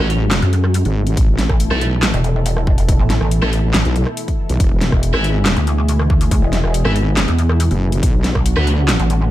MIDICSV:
0, 0, Header, 1, 6, 480
1, 0, Start_track
1, 0, Tempo, 428571
1, 1312, Time_signature, 4, 2, 24, 8
1, 10426, End_track
2, 0, Start_track
2, 0, Title_t, "Distorted electric guitar"
2, 0, Program_c, 0, 30
2, 0, Note_on_c, 0, 54, 78
2, 72, Note_off_c, 0, 54, 0
2, 1910, Note_on_c, 0, 69, 114
2, 1916, Note_on_c, 0, 64, 95
2, 1922, Note_on_c, 0, 57, 86
2, 2039, Note_off_c, 0, 57, 0
2, 2039, Note_off_c, 0, 64, 0
2, 2039, Note_off_c, 0, 69, 0
2, 3831, Note_on_c, 0, 69, 100
2, 3835, Note_on_c, 0, 64, 76
2, 3842, Note_on_c, 0, 57, 77
2, 3912, Note_off_c, 0, 57, 0
2, 3912, Note_off_c, 0, 64, 0
2, 3912, Note_off_c, 0, 69, 0
2, 5751, Note_on_c, 0, 76, 108
2, 5756, Note_on_c, 0, 71, 82
2, 5760, Note_on_c, 0, 64, 87
2, 5879, Note_off_c, 0, 64, 0
2, 5879, Note_off_c, 0, 71, 0
2, 5879, Note_off_c, 0, 76, 0
2, 7671, Note_on_c, 0, 76, 94
2, 7676, Note_on_c, 0, 71, 73
2, 7682, Note_on_c, 0, 64, 84
2, 7752, Note_off_c, 0, 64, 0
2, 7752, Note_off_c, 0, 71, 0
2, 7752, Note_off_c, 0, 76, 0
2, 9590, Note_on_c, 0, 71, 100
2, 9595, Note_on_c, 0, 59, 94
2, 9601, Note_on_c, 0, 66, 78
2, 9719, Note_off_c, 0, 59, 0
2, 9719, Note_off_c, 0, 66, 0
2, 9719, Note_off_c, 0, 71, 0
2, 10426, End_track
3, 0, Start_track
3, 0, Title_t, "Analog synth pad"
3, 0, Program_c, 1, 89
3, 0, Note_on_c, 1, 49, 84
3, 0, Note_on_c, 1, 54, 76
3, 0, Note_on_c, 1, 56, 76
3, 0, Note_on_c, 1, 57, 74
3, 0, Note_on_c, 1, 66, 90
3, 1273, Note_off_c, 1, 49, 0
3, 1273, Note_off_c, 1, 54, 0
3, 1273, Note_off_c, 1, 56, 0
3, 1273, Note_off_c, 1, 66, 0
3, 1311, Note_on_c, 1, 47, 84
3, 1311, Note_on_c, 1, 52, 76
3, 1311, Note_on_c, 1, 64, 76
3, 1311, Note_on_c, 1, 69, 91
3, 5106, Note_off_c, 1, 57, 0
3, 5113, Note_off_c, 1, 52, 0
3, 5113, Note_off_c, 1, 69, 0
3, 5151, Note_on_c, 1, 52, 74
3, 5151, Note_on_c, 1, 56, 76
3, 5151, Note_on_c, 1, 68, 91
3, 8946, Note_off_c, 1, 64, 0
3, 8953, Note_off_c, 1, 52, 0
3, 8953, Note_off_c, 1, 56, 0
3, 8953, Note_off_c, 1, 68, 0
3, 8992, Note_on_c, 1, 62, 75
3, 8993, Note_on_c, 1, 50, 76
3, 8993, Note_on_c, 1, 54, 74
3, 8993, Note_on_c, 1, 66, 91
3, 10426, Note_off_c, 1, 47, 0
3, 10426, Note_off_c, 1, 50, 0
3, 10426, Note_off_c, 1, 54, 0
3, 10426, Note_off_c, 1, 62, 0
3, 10426, Note_off_c, 1, 66, 0
3, 10426, End_track
4, 0, Start_track
4, 0, Title_t, "Wobble bass"
4, 0, Program_c, 2, 39
4, 0, Note_on_c, 2, 33, 98
4, 454, Note_off_c, 2, 33, 0
4, 953, Note_on_c, 2, 32, 97
4, 1292, Note_off_c, 2, 32, 0
4, 1312, Note_on_c, 2, 33, 95
4, 1654, Note_off_c, 2, 33, 0
4, 1913, Note_on_c, 2, 35, 96
4, 2374, Note_off_c, 2, 35, 0
4, 3834, Note_on_c, 2, 33, 101
4, 4173, Note_off_c, 2, 33, 0
4, 4314, Note_on_c, 2, 35, 99
4, 4534, Note_off_c, 2, 35, 0
4, 5034, Note_on_c, 2, 35, 102
4, 5133, Note_off_c, 2, 35, 0
4, 5151, Note_on_c, 2, 28, 95
4, 5494, Note_off_c, 2, 28, 0
4, 5754, Note_on_c, 2, 32, 99
4, 6214, Note_off_c, 2, 32, 0
4, 7673, Note_on_c, 2, 32, 103
4, 8134, Note_off_c, 2, 32, 0
4, 8633, Note_on_c, 2, 30, 97
4, 8972, Note_off_c, 2, 30, 0
4, 8992, Note_on_c, 2, 35, 93
4, 9334, Note_off_c, 2, 35, 0
4, 9594, Note_on_c, 2, 38, 98
4, 10054, Note_off_c, 2, 38, 0
4, 10426, End_track
5, 0, Start_track
5, 0, Title_t, "Wobble bass"
5, 0, Program_c, 3, 39
5, 473, Note_on_c, 3, 42, 100
5, 934, Note_off_c, 3, 42, 0
5, 1674, Note_on_c, 3, 33, 98
5, 1894, Note_off_c, 3, 33, 0
5, 2393, Note_on_c, 3, 28, 99
5, 3334, Note_off_c, 3, 28, 0
5, 3354, Note_on_c, 3, 33, 101
5, 3574, Note_off_c, 3, 33, 0
5, 3593, Note_on_c, 3, 33, 97
5, 3814, Note_off_c, 3, 33, 0
5, 4191, Note_on_c, 3, 33, 97
5, 4294, Note_off_c, 3, 33, 0
5, 5514, Note_on_c, 3, 28, 94
5, 5734, Note_off_c, 3, 28, 0
5, 6233, Note_on_c, 3, 38, 98
5, 7174, Note_off_c, 3, 38, 0
5, 7193, Note_on_c, 3, 28, 100
5, 7414, Note_off_c, 3, 28, 0
5, 7433, Note_on_c, 3, 28, 96
5, 7654, Note_off_c, 3, 28, 0
5, 8153, Note_on_c, 3, 40, 103
5, 8614, Note_off_c, 3, 40, 0
5, 9354, Note_on_c, 3, 35, 98
5, 9574, Note_off_c, 3, 35, 0
5, 10073, Note_on_c, 3, 33, 98
5, 10426, Note_off_c, 3, 33, 0
5, 10426, End_track
6, 0, Start_track
6, 0, Title_t, "Drums"
6, 111, Note_on_c, 9, 42, 54
6, 223, Note_off_c, 9, 42, 0
6, 351, Note_on_c, 9, 38, 127
6, 351, Note_on_c, 9, 39, 95
6, 351, Note_on_c, 9, 42, 81
6, 463, Note_off_c, 9, 38, 0
6, 463, Note_off_c, 9, 39, 0
6, 463, Note_off_c, 9, 42, 0
6, 474, Note_on_c, 9, 42, 38
6, 586, Note_off_c, 9, 42, 0
6, 592, Note_on_c, 9, 42, 55
6, 704, Note_off_c, 9, 42, 0
6, 714, Note_on_c, 9, 37, 60
6, 826, Note_off_c, 9, 37, 0
6, 832, Note_on_c, 9, 42, 84
6, 944, Note_off_c, 9, 42, 0
6, 954, Note_on_c, 9, 42, 39
6, 1066, Note_off_c, 9, 42, 0
6, 1194, Note_on_c, 9, 42, 62
6, 1306, Note_off_c, 9, 42, 0
6, 1312, Note_on_c, 9, 36, 126
6, 1312, Note_on_c, 9, 42, 79
6, 1424, Note_off_c, 9, 36, 0
6, 1424, Note_off_c, 9, 42, 0
6, 1552, Note_on_c, 9, 38, 64
6, 1552, Note_on_c, 9, 42, 51
6, 1664, Note_off_c, 9, 38, 0
6, 1664, Note_off_c, 9, 42, 0
6, 1674, Note_on_c, 9, 36, 65
6, 1674, Note_on_c, 9, 37, 52
6, 1786, Note_off_c, 9, 36, 0
6, 1786, Note_off_c, 9, 37, 0
6, 1791, Note_on_c, 9, 42, 76
6, 1903, Note_off_c, 9, 42, 0
6, 1914, Note_on_c, 9, 37, 74
6, 2026, Note_off_c, 9, 37, 0
6, 2031, Note_on_c, 9, 42, 51
6, 2143, Note_off_c, 9, 42, 0
6, 2271, Note_on_c, 9, 38, 127
6, 2271, Note_on_c, 9, 39, 95
6, 2271, Note_on_c, 9, 42, 82
6, 2383, Note_off_c, 9, 38, 0
6, 2383, Note_off_c, 9, 39, 0
6, 2383, Note_off_c, 9, 42, 0
6, 2394, Note_on_c, 9, 42, 36
6, 2506, Note_off_c, 9, 42, 0
6, 2512, Note_on_c, 9, 42, 51
6, 2624, Note_off_c, 9, 42, 0
6, 2752, Note_on_c, 9, 42, 79
6, 2864, Note_off_c, 9, 42, 0
6, 2874, Note_on_c, 9, 37, 60
6, 2986, Note_off_c, 9, 37, 0
6, 2991, Note_on_c, 9, 36, 115
6, 3103, Note_off_c, 9, 36, 0
6, 3114, Note_on_c, 9, 42, 61
6, 3226, Note_off_c, 9, 42, 0
6, 3231, Note_on_c, 9, 36, 126
6, 3232, Note_on_c, 9, 42, 76
6, 3343, Note_off_c, 9, 36, 0
6, 3344, Note_off_c, 9, 42, 0
6, 3472, Note_on_c, 9, 38, 65
6, 3472, Note_on_c, 9, 42, 51
6, 3584, Note_off_c, 9, 38, 0
6, 3584, Note_off_c, 9, 42, 0
6, 3594, Note_on_c, 9, 37, 52
6, 3706, Note_off_c, 9, 37, 0
6, 3712, Note_on_c, 9, 42, 73
6, 3824, Note_off_c, 9, 42, 0
6, 3834, Note_on_c, 9, 37, 75
6, 3946, Note_off_c, 9, 37, 0
6, 3952, Note_on_c, 9, 42, 52
6, 4064, Note_off_c, 9, 42, 0
6, 4192, Note_on_c, 9, 38, 125
6, 4192, Note_on_c, 9, 39, 88
6, 4192, Note_on_c, 9, 42, 77
6, 4304, Note_off_c, 9, 38, 0
6, 4304, Note_off_c, 9, 39, 0
6, 4304, Note_off_c, 9, 42, 0
6, 4314, Note_on_c, 9, 42, 37
6, 4426, Note_off_c, 9, 42, 0
6, 4432, Note_on_c, 9, 42, 49
6, 4544, Note_off_c, 9, 42, 0
6, 4554, Note_on_c, 9, 37, 59
6, 4666, Note_off_c, 9, 37, 0
6, 4672, Note_on_c, 9, 42, 76
6, 4784, Note_off_c, 9, 42, 0
6, 4794, Note_on_c, 9, 36, 64
6, 4794, Note_on_c, 9, 42, 37
6, 4906, Note_off_c, 9, 36, 0
6, 4906, Note_off_c, 9, 42, 0
6, 5034, Note_on_c, 9, 42, 61
6, 5146, Note_off_c, 9, 42, 0
6, 5151, Note_on_c, 9, 36, 120
6, 5152, Note_on_c, 9, 42, 78
6, 5263, Note_off_c, 9, 36, 0
6, 5264, Note_off_c, 9, 42, 0
6, 5392, Note_on_c, 9, 38, 63
6, 5392, Note_on_c, 9, 42, 51
6, 5504, Note_off_c, 9, 38, 0
6, 5504, Note_off_c, 9, 42, 0
6, 5514, Note_on_c, 9, 36, 62
6, 5514, Note_on_c, 9, 37, 55
6, 5626, Note_off_c, 9, 36, 0
6, 5626, Note_off_c, 9, 37, 0
6, 5632, Note_on_c, 9, 42, 75
6, 5744, Note_off_c, 9, 42, 0
6, 5754, Note_on_c, 9, 37, 82
6, 5866, Note_off_c, 9, 37, 0
6, 5871, Note_on_c, 9, 42, 51
6, 5983, Note_off_c, 9, 42, 0
6, 6111, Note_on_c, 9, 38, 123
6, 6111, Note_on_c, 9, 39, 88
6, 6111, Note_on_c, 9, 42, 76
6, 6223, Note_off_c, 9, 38, 0
6, 6223, Note_off_c, 9, 39, 0
6, 6223, Note_off_c, 9, 42, 0
6, 6234, Note_on_c, 9, 42, 36
6, 6346, Note_off_c, 9, 42, 0
6, 6351, Note_on_c, 9, 42, 51
6, 6463, Note_off_c, 9, 42, 0
6, 6591, Note_on_c, 9, 42, 78
6, 6703, Note_off_c, 9, 42, 0
6, 6714, Note_on_c, 9, 37, 63
6, 6826, Note_off_c, 9, 37, 0
6, 6831, Note_on_c, 9, 36, 109
6, 6943, Note_off_c, 9, 36, 0
6, 6954, Note_on_c, 9, 42, 60
6, 7066, Note_off_c, 9, 42, 0
6, 7071, Note_on_c, 9, 36, 118
6, 7071, Note_on_c, 9, 42, 80
6, 7183, Note_off_c, 9, 36, 0
6, 7183, Note_off_c, 9, 42, 0
6, 7311, Note_on_c, 9, 38, 59
6, 7311, Note_on_c, 9, 42, 53
6, 7423, Note_off_c, 9, 38, 0
6, 7423, Note_off_c, 9, 42, 0
6, 7434, Note_on_c, 9, 37, 56
6, 7546, Note_off_c, 9, 37, 0
6, 7551, Note_on_c, 9, 42, 77
6, 7663, Note_off_c, 9, 42, 0
6, 7674, Note_on_c, 9, 37, 83
6, 7786, Note_off_c, 9, 37, 0
6, 7791, Note_on_c, 9, 42, 54
6, 7903, Note_off_c, 9, 42, 0
6, 8031, Note_on_c, 9, 38, 118
6, 8031, Note_on_c, 9, 39, 89
6, 8031, Note_on_c, 9, 42, 81
6, 8143, Note_off_c, 9, 38, 0
6, 8143, Note_off_c, 9, 39, 0
6, 8143, Note_off_c, 9, 42, 0
6, 8154, Note_on_c, 9, 42, 38
6, 8266, Note_off_c, 9, 42, 0
6, 8271, Note_on_c, 9, 42, 52
6, 8383, Note_off_c, 9, 42, 0
6, 8393, Note_on_c, 9, 37, 64
6, 8505, Note_off_c, 9, 37, 0
6, 8512, Note_on_c, 9, 42, 81
6, 8624, Note_off_c, 9, 42, 0
6, 8634, Note_on_c, 9, 42, 38
6, 8746, Note_off_c, 9, 42, 0
6, 8874, Note_on_c, 9, 42, 62
6, 8986, Note_off_c, 9, 42, 0
6, 8991, Note_on_c, 9, 36, 116
6, 8992, Note_on_c, 9, 42, 84
6, 9103, Note_off_c, 9, 36, 0
6, 9104, Note_off_c, 9, 42, 0
6, 9232, Note_on_c, 9, 38, 60
6, 9232, Note_on_c, 9, 42, 57
6, 9344, Note_off_c, 9, 38, 0
6, 9344, Note_off_c, 9, 42, 0
6, 9354, Note_on_c, 9, 36, 60
6, 9354, Note_on_c, 9, 37, 55
6, 9466, Note_off_c, 9, 36, 0
6, 9466, Note_off_c, 9, 37, 0
6, 9472, Note_on_c, 9, 42, 82
6, 9584, Note_off_c, 9, 42, 0
6, 9594, Note_on_c, 9, 37, 84
6, 9706, Note_off_c, 9, 37, 0
6, 9712, Note_on_c, 9, 42, 55
6, 9824, Note_off_c, 9, 42, 0
6, 9952, Note_on_c, 9, 38, 113
6, 9952, Note_on_c, 9, 39, 90
6, 9952, Note_on_c, 9, 42, 83
6, 10064, Note_off_c, 9, 38, 0
6, 10064, Note_off_c, 9, 39, 0
6, 10064, Note_off_c, 9, 42, 0
6, 10074, Note_on_c, 9, 42, 40
6, 10186, Note_off_c, 9, 42, 0
6, 10192, Note_on_c, 9, 42, 56
6, 10304, Note_off_c, 9, 42, 0
6, 10426, End_track
0, 0, End_of_file